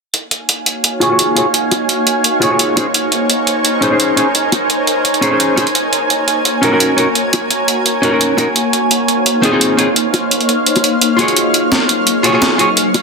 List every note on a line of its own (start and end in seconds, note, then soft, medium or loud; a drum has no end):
0.14 2.74 A#3 medium
0.14 5.71 D#4 medium
0.14 2.74 F#4 medium
0.14 5.71 C#5 medium
0.14 2.74 F5 medium
0.14 2.74 G#5 medium
0.14 closed hi-hat medium
0.31 closed hi-hat medium
0.49 closed hi-hat medium
0.66 closed hi-hat medium
0.84 closed hi-hat medium
1.00 1.08 F4 medium
1.00 1.09 F#4 medium
1.00 1.10 G#4 medium
1.00 1.10 C#5 loud
1.00 closed hi-hat medium
1.09 1.34 F4 medium
1.09 1.34 F#4 medium
1.09 1.35 G#4 medium
1.09 1.35 C#5 medium
1.19 closed hi-hat medium
1.35 1.45 F4 medium
1.35 1.45 F#4 medium
1.35 1.46 G#4 medium
1.35 1.46 C#5 medium
1.35 closed hi-hat medium
1.54 closed hi-hat medium
1.72 closed hi-hat medium
1.72 high bongo medium
1.89 closed hi-hat medium
2.07 closed hi-hat medium
2.24 closed hi-hat medium
2.41 2.49 F4 medium
2.41 2.49 F#4 medium
2.41 2.50 G#4 medium
2.41 2.50 C#5 loud
2.41 closed hi-hat medium
2.50 2.74 F4 medium
2.50 2.75 F#4 medium
2.50 2.75 G#4 medium
2.50 2.76 C#5 medium
2.59 closed hi-hat medium
2.76 2.85 C#4 medium
2.76 2.85 D#4 medium
2.76 2.86 G#4 medium
2.76 5.72 A#4 medium
2.76 5.72 C5 medium
2.76 2.86 C5 medium
2.76 8.52 G#5 medium
2.76 closed hi-hat medium
2.76 high bongo medium
2.94 closed hi-hat medium
3.12 closed hi-hat medium
3.30 closed hi-hat medium
3.47 closed hi-hat medium
3.65 closed hi-hat medium
3.81 3.89 C#4 medium
3.81 3.90 D#4 medium
3.81 3.90 G#4 medium
3.81 3.91 C5 loud
3.81 closed hi-hat medium
3.90 4.15 C#4 medium
3.90 4.15 D#4 medium
3.90 4.16 G#4 medium
3.90 4.16 C5 medium
4.00 closed hi-hat medium
4.16 4.25 C#4 medium
4.16 4.26 D#4 medium
4.16 4.26 G#4 medium
4.16 4.27 C5 medium
4.16 closed hi-hat medium
4.35 closed hi-hat medium
4.52 closed hi-hat medium
4.52 high bongo medium
4.70 closed hi-hat medium
4.87 closed hi-hat medium
5.05 closed hi-hat medium
5.14 closed hi-hat soft
5.21 5.29 C#4 medium
5.21 5.30 D#4 medium
5.21 5.31 G#4 medium
5.21 5.31 C5 loud
5.21 closed hi-hat medium
5.30 5.55 C#4 medium
5.30 5.55 D#4 medium
5.30 5.56 G#4 medium
5.30 5.56 C5 medium
5.40 closed hi-hat medium
5.56 5.66 C#4 medium
5.56 5.66 D#4 medium
5.56 5.66 G#4 medium
5.56 5.67 C5 medium
5.56 closed hi-hat medium
5.56 high bongo medium
5.67 closed hi-hat soft
5.75 13.02 A#3 medium
5.75 8.53 F#4 medium
5.75 8.53 A#4 medium
5.75 13.02 C#5 medium
5.75 closed hi-hat medium
5.93 closed hi-hat medium
6.10 closed hi-hat medium
6.28 closed hi-hat medium
6.45 closed hi-hat medium
6.62 6.70 C#4 medium
6.62 6.71 D#4 medium
6.62 6.71 F#4 medium
6.62 6.71 A#4 loud
6.62 closed hi-hat medium
6.71 6.95 C#4 medium
6.71 6.96 D#4 medium
6.71 6.96 F#4 medium
6.71 6.97 A#4 medium
6.80 closed hi-hat medium
6.97 7.06 C#4 medium
6.97 7.06 D#4 medium
6.97 7.07 F#4 medium
6.97 7.07 A#4 medium
6.97 closed hi-hat medium
7.15 closed hi-hat medium
7.33 closed hi-hat medium
7.33 high bongo medium
7.51 closed hi-hat medium
7.68 closed hi-hat medium
7.86 closed hi-hat medium
8.02 8.10 C#4 medium
8.02 8.11 D#4 medium
8.02 8.11 F#4 medium
8.02 8.12 A#4 loud
8.02 closed hi-hat medium
8.11 8.36 C#4 medium
8.11 8.36 D#4 medium
8.11 8.37 F#4 medium
8.11 8.37 A#4 medium
8.21 closed hi-hat medium
8.37 8.46 C#4 medium
8.37 8.47 D#4 medium
8.37 8.47 F#4 medium
8.37 8.48 A#4 medium
8.37 closed hi-hat medium
8.37 high bongo medium
8.56 11.34 D#4 medium
8.56 11.34 C5 medium
8.56 13.02 F5 medium
8.56 closed hi-hat medium
8.73 closed hi-hat medium
8.91 closed hi-hat medium
9.08 closed hi-hat medium
9.26 closed hi-hat medium
9.42 9.50 C4 medium
9.42 9.51 D#4 medium
9.42 9.52 F4 medium
9.42 9.52 G#4 loud
9.42 closed hi-hat medium
9.51 9.76 C4 medium
9.51 9.76 D#4 medium
9.51 9.77 F4 medium
9.51 9.77 G#4 medium
9.61 closed hi-hat medium
9.77 9.87 C4 medium
9.77 9.87 D#4 medium
9.77 9.87 F4 medium
9.77 9.88 G#4 medium
9.77 closed hi-hat medium
9.96 closed hi-hat medium
10.14 closed hi-hat medium
10.14 high bongo medium
10.31 closed hi-hat medium
10.41 closed hi-hat soft
10.49 closed hi-hat medium
10.66 closed hi-hat medium
10.76 closed hi-hat soft
10.76 high bongo medium
10.84 closed hi-hat medium
11.01 closed hi-hat medium
11.17 12.22 F4 medium
11.17 12.23 F#4 medium
11.17 12.24 G#4 medium
11.17 closed hi-hat medium
11.17 high bongo medium
11.22 12.24 C#5 medium
11.28 closed hi-hat soft
11.36 13.02 F#3 medium
11.36 13.02 D#4 medium
11.36 13.02 G#4 medium
11.36 closed hi-hat medium
11.54 closed hi-hat medium
11.72 snare loud
11.72 closed hi-hat medium
11.89 closed hi-hat medium
12.07 closed hi-hat medium
12.23 12.31 F4 medium
12.23 12.32 F#4 medium
12.23 12.32 G#4 medium
12.23 12.33 C#5 loud
12.23 closed hi-hat medium
12.32 12.57 F4 medium
12.32 12.57 F#4 medium
12.32 12.58 G#4 medium
12.32 12.58 C#5 medium
12.42 snare loud
12.42 closed hi-hat medium
12.58 12.67 F4 medium
12.58 12.68 F#4 medium
12.58 12.68 G#4 medium
12.58 12.69 C#5 medium
12.58 closed hi-hat medium
12.77 closed hi-hat medium
12.94 closed hi-hat medium
12.94 high bongo medium